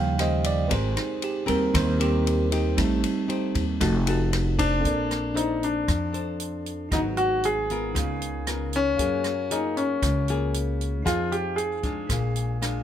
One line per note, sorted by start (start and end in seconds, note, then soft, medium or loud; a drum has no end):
0.00 0.67 D#2 loud
0.00 0.42 C#3 soft
0.00 0.68 D#3 medium
0.00 0.42 F3 soft
0.00 0.42 G3 soft
0.00 0.15 C#4 medium
0.00 0.15 G4 medium
0.00 0.16 C5 medium
0.00 0.19 F5 medium
0.00 0.73 G5 medium
0.18 0.67 C#4 medium
0.18 0.67 G4 medium
0.18 0.67 C5 medium
0.18 0.45 D#5 medium
0.18 cross-stick medium
0.18 ride soft
0.44 0.71 D5 medium
0.44 ride medium
0.68 0.95 G#1 loud
0.68 1.71 G#3 medium
0.68 1.43 C4 medium
0.68 1.44 G4 medium
0.68 1.44 A#4 medium
0.68 0.71 B4 soft
0.68 kick medium
0.68 ride medium
0.73 0.97 C5 medium
0.97 1.22 D#4 medium
0.97 cross-stick medium
0.97 ride soft
1.22 1.48 G4 medium
1.22 ride soft
1.46 1.73 D#2 medium
1.46 2.74 G3 soft
1.46 2.74 A#3 soft
1.46 1.95 C4 medium
1.46 2.74 C4 soft
1.46 1.95 G4 medium
1.46 1.95 A#4 medium
1.46 1.74 A#4 medium
1.46 ride soft
1.74 2.74 D#2 loud
1.74 2.75 D#3 medium
1.74 2.01 C5 medium
1.74 kick medium
1.74 cross-stick medium
1.74 ride medium
2.00 2.48 C4 medium
2.00 2.48 G4 medium
2.00 2.16 G4 medium
2.00 2.48 A#4 medium
2.00 ride soft
2.27 ride soft
2.52 3.25 D#4 medium
2.52 3.26 G4 medium
2.52 3.26 C5 medium
2.52 ride soft
2.77 3.02 A1 loud
2.77 3.12 G3 soft
2.77 3.79 A3 medium
2.77 3.12 C4 soft
2.77 3.12 D#4 soft
2.77 kick medium
2.77 cross-stick medium
2.77 ride medium
3.04 ride soft
3.28 3.64 D#4 medium
3.28 3.64 G4 medium
3.28 3.64 C5 medium
3.28 ride soft
3.55 3.79 D#2 medium
3.55 kick medium
3.55 ride soft
3.80 4.80 F1 loud
3.80 4.82 F3 medium
3.80 4.81 A3 soft
3.80 3.96 D#4 medium
3.80 4.80 D#4 medium
3.80 3.96 F#4 medium
3.80 3.97 A4 medium
3.80 kick medium
3.80 cross-stick medium
3.80 ride medium
4.07 4.55 D#4 medium
4.07 4.55 F#4 medium
4.07 4.55 A4 medium
4.07 ride soft
4.33 cross-stick medium
4.33 ride soft
4.58 5.33 D4 medium
4.58 5.39 D4 loud
4.58 5.35 A4 medium
4.58 5.34 C5 medium
4.58 kick medium
4.58 ride medium
4.80 6.85 C4 soft
4.80 6.87 A4 soft
4.84 5.84 A#1 medium
4.84 5.86 A#3 soft
4.84 6.89 D5 medium
4.84 kick medium
4.84 closed hi-hat soft
5.11 cross-stick soft
5.11 closed hi-hat soft
5.34 6.09 D4 medium
5.34 5.63 D#4 medium
5.34 6.10 A4 soft
5.34 6.09 C5 medium
5.34 closed hi-hat soft
5.63 6.96 D4 medium
5.63 closed hi-hat soft
5.88 6.93 F2 medium
5.88 6.89 F3 medium
5.88 kick medium
5.88 cross-stick medium
5.88 closed hi-hat soft
6.13 6.87 D4 medium
6.13 6.87 A4 medium
6.13 6.88 C5 medium
6.13 closed hi-hat soft
6.40 closed hi-hat soft
6.66 closed hi-hat soft
6.89 7.91 G#1 medium
6.89 7.93 G#2 soft
6.89 7.65 F#3 medium
6.89 7.65 B3 soft
6.89 7.91 D#4 soft
6.89 7.66 D#4 medium
6.89 7.93 G#4 soft
6.89 7.94 B4 soft
6.89 kick medium
6.89 cross-stick medium
6.89 closed hi-hat soft
6.93 6.99 D#4 medium
6.93 7.95 F#5 medium
7.17 7.44 F#4 medium
7.17 closed hi-hat soft
7.44 8.78 G#4 medium
7.44 closed hi-hat soft
7.70 8.44 B3 medium
7.70 8.44 F4 medium
7.70 8.44 A#4 medium
7.70 closed hi-hat soft
7.92 8.99 C#2 medium
7.92 8.96 C#3 medium
7.92 8.96 D#4 soft
7.92 8.97 A#4 soft
7.92 kick medium
7.92 cross-stick medium
7.92 closed hi-hat soft
7.98 8.95 F5 medium
8.22 closed hi-hat soft
8.47 8.95 B3 medium
8.47 8.95 F4 medium
8.47 8.96 A#4 medium
8.47 cross-stick medium
8.47 closed hi-hat soft
8.73 9.55 C#4 loud
8.73 closed hi-hat soft
8.97 9.99 F#2 medium
8.97 10.00 F#3 medium
8.97 9.32 A#3 medium
8.97 9.33 F4 medium
8.97 11.02 G#4 soft
8.97 9.33 G#4 medium
8.97 11.03 A#4 soft
8.97 11.01 F5 medium
8.97 kick medium
8.97 closed hi-hat soft
9.02 11.04 F#4 medium
9.24 cross-stick medium
9.24 closed hi-hat soft
9.50 10.02 A#3 medium
9.50 9.78 D#4 medium
9.50 10.02 F4 medium
9.50 10.03 G#4 medium
9.50 closed hi-hat soft
9.77 11.03 C#4 medium
9.77 closed hi-hat soft
10.02 11.05 C#2 loud
10.02 11.04 C#3 medium
10.02 kick medium
10.02 cross-stick medium
10.02 closed hi-hat soft
10.28 11.03 A#3 medium
10.28 11.03 F4 medium
10.28 11.03 G#4 medium
10.28 closed hi-hat soft
10.54 closed hi-hat soft
10.81 closed hi-hat soft
11.03 12.06 F2 medium
11.03 11.83 F3 medium
11.03 11.79 C4 soft
11.03 12.06 D#4 soft
11.03 11.80 D#4 medium
11.03 11.33 F4 medium
11.03 12.07 G#4 soft
11.03 11.80 G#4 medium
11.03 kick medium
11.03 cross-stick medium
11.03 closed hi-hat soft
11.07 12.08 C5 soft
11.07 12.09 F5 medium
11.32 11.59 G4 medium
11.32 closed hi-hat soft
11.56 12.83 G#4 medium
11.56 closed hi-hat soft
11.83 12.57 G#3 medium
11.83 12.58 D4 medium
11.83 12.58 F4 medium
11.83 kick medium
11.83 closed hi-hat soft
12.07 12.83 A#1 medium
12.07 12.83 A#2 soft
12.07 12.83 D4 soft
12.07 12.83 G#4 soft
12.07 12.83 A#4 soft
12.07 kick medium
12.07 cross-stick medium
12.07 closed hi-hat soft
12.13 12.61 F5 soft
12.36 closed hi-hat soft
12.62 12.83 G#3 medium
12.62 12.83 D4 medium
12.62 12.83 F4 medium
12.62 12.83 F5 medium
12.62 cross-stick medium
12.62 closed hi-hat soft